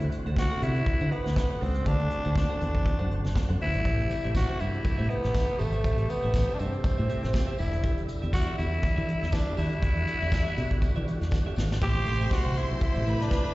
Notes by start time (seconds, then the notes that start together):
Already playing: D3 C4 E4 F#4
0.01 muted clean electric guitar stroke, closed hi-hat
0.12 muted clean electric guitar stroke, closed hi-hat
0.26 D2 A4 C5 F#5, closed hi-hat
0.36 F#4, muted clean electric guitar stroke, kick, snare
0.51 A4 C5 F#5, closed hi-hat
0.62 C3 E4 A4 C5 F#5, closed hi-hat
0.75 muted clean electric guitar stroke, closed hi-hat
0.86 muted clean electric guitar stroke, muted fingered electric bass stroke, kick, closed hi-hat
1.00 D3 A4 C5 F#5, closed hi-hat
1.12 B3, muted clean electric guitar stroke, closed hi-hat
1.25 D2, muted clean electric guitar stroke, snare, closed hi-hat
1.36 B3, muted clean electric guitar stroke, kick, snare
1.50 muted clean electric guitar stroke, closed hi-hat
1.61 C#2 C4 A4 C5 F#5, open hi-hat
1.75 A4 C5 F#5, closed hi-hat
1.86 D2 D4 A4 C5 F#5, kick, closed hi-hat
1.99 muted clean electric guitar stroke, closed hi-hat
2.10 muted clean electric guitar stroke, closed hi-hat
2.24 D2 A4 C5 F#5, closed hi-hat
2.36 D4, kick, snare
2.50 A4 C5 F#5, closed hi-hat
2.60 E2 A4 C5 F#5, closed hi-hat
2.75 muted clean electric guitar stroke, kick
2.85 muted clean electric guitar stroke, kick, closed hi-hat
2.99 F#2 A4 C5 F#5, closed hi-hat
3.10 F#1, muted clean electric guitar stroke, closed hi-hat
3.24 F#1, muted clean electric guitar stroke, snare, closed hi-hat
3.35 muted clean electric guitar stroke, kick, snare
3.49 F#2 A4 C5 F#5, closed hi-hat
3.60 D2 E4, muted clean electric guitar stroke, open hi-hat
3.74 G#1, muted clean electric guitar stroke, closed hi-hat
3.85 A1 C3 A3 G4 C5 E5, kick, closed hi-hat
3.99 muted clean electric guitar stroke, closed hi-hat
4.10 muted clean electric guitar stroke, closed hi-hat, tambourine
4.24 A1 G4 C5 E5, closed hi-hat
4.35 F#4, kick, snare, tambourine
4.49 G4 C5 E5, closed hi-hat
4.59 G2 E4 G4 C5 E5, closed hi-hat, tambourine
4.73 muted clean electric guitar stroke, closed hi-hat
4.84 muted clean electric guitar stroke, muted fingered electric bass stroke, kick, closed hi-hat, tambourine
4.98 A2 G4 C5 E5, closed hi-hat
5.09 B3, muted clean electric guitar stroke, closed hi-hat
5.23 A1, muted clean electric guitar stroke, snare, closed hi-hat
5.34 muted clean electric guitar stroke, kick, snare, tambourine
5.48 muted clean electric guitar stroke, closed hi-hat
5.59 G#1 A3 G4 C5 E5, open hi-hat, tambourine
5.73 G4 C5 E5, closed hi-hat
5.84 A1 G4 C5 E5, kick, closed hi-hat, tambourine
5.98 muted clean electric guitar stroke, closed hi-hat
6.09 B3, muted clean electric guitar stroke, closed hi-hat, tambourine
6.23 A1 G4 C5 E5, closed hi-hat
6.34 muted clean electric guitar stroke, kick, snare, tambourine
6.47 G4 C5 E5, closed hi-hat
6.54 D4
6.59 G2 C4 G4 C5 E5, closed hi-hat, tambourine
6.73 muted clean electric guitar stroke, closed hi-hat
6.84 muted clean electric guitar stroke, muted fingered electric bass stroke, kick, closed hi-hat, tambourine
6.97 A2 G4 C5 E5, closed hi-hat
7.08 G4 C5 E5, closed hi-hat, tambourine
7.23 A1, muted clean electric guitar stroke, snare, closed hi-hat
7.33 muted clean electric guitar stroke, kick, snare, tambourine
7.47 G4 C5 E5, closed hi-hat
7.58 E1 D3 G3 E4, muted clean electric guitar stroke, open hi-hat, tambourine
7.73 muted clean electric guitar stroke, closed hi-hat
7.83 G4 D5 E5, kick, closed hi-hat, tambourine
7.97 muted clean electric guitar stroke, closed hi-hat
8.08 muted clean electric guitar stroke, closed hi-hat, tambourine
8.22 E2 G4 D5 E5, closed hi-hat
8.33 F#4, muted clean electric guitar stroke, kick, snare, tambourine
8.47 G4 D5 E5, closed hi-hat
8.58 E2 E4 G4 D5 E5, closed hi-hat, tambourine
8.72 muted clean electric guitar stroke, closed hi-hat
8.83 muted clean electric guitar stroke, kick, closed hi-hat, tambourine
8.96 E3 G4 D5 E5, closed hi-hat
9.08 muted clean electric guitar stroke, closed hi-hat
9.21 E2, muted clean electric guitar stroke, snare, closed hi-hat
9.32 D4, muted clean electric guitar stroke, kick, snare, tambourine
9.47 muted clean electric guitar stroke, closed hi-hat
9.57 D#2 E4 F#4 G4 D5 E5, open hi-hat, tambourine
9.72 G4 D5 E5, closed hi-hat
9.82 E2 G4 D5 E5, kick, closed hi-hat
9.96 muted clean electric guitar stroke, closed hi-hat
10.07 muted clean electric guitar stroke, closed hi-hat, tambourine
10.21 E2 G4 D5 E5, closed hi-hat
10.32 kick, snare, tambourine
10.46 G4 D5 E5, closed hi-hat
10.57 B2 G4 D5 E5, closed hi-hat, tambourine
10.71 muted clean electric guitar stroke, kick, closed hi-hat
10.82 muted clean electric guitar stroke, kick, closed hi-hat, tambourine
10.95 E3 G4 D5 E5, closed hi-hat
11.07 muted clean electric guitar stroke, closed hi-hat, tambourine
11.21 E2, muted clean electric guitar stroke, snare, closed hi-hat
11.31 muted clean electric guitar stroke, kick, snare, tambourine
11.46 G4 D5 E5
11.56 G#1, muted clean electric guitar stroke, snare, tambourine
11.71 muted clean electric guitar stroke, snare
11.81 A1 C3 A3 G4 C5 E5 C6, kick, closed hi-hat
11.95 muted clean electric guitar stroke, closed hi-hat
12.06 A1, muted clean electric guitar stroke, closed hi-hat
12.20 G4 C5 E5, closed hi-hat
12.31 F#4, muted clean electric guitar stroke, kick, snare
12.45 C2 G4 C5 E5, closed hi-hat
12.56 E4 G4 C5 E5, closed hi-hat
12.70 B1, muted clean electric guitar stroke, closed hi-hat
12.81 E4, muted clean electric guitar stroke, kick, closed hi-hat
12.94 A1 G4 C5 E5, closed hi-hat
13.06 A2 B4 B5, muted clean electric guitar stroke, closed hi-hat
13.20 D4, muted clean electric guitar stroke, snare, closed hi-hat
13.31 muted clean electric guitar stroke, kick, snare
13.44 muted clean electric guitar stroke, closed hi-hat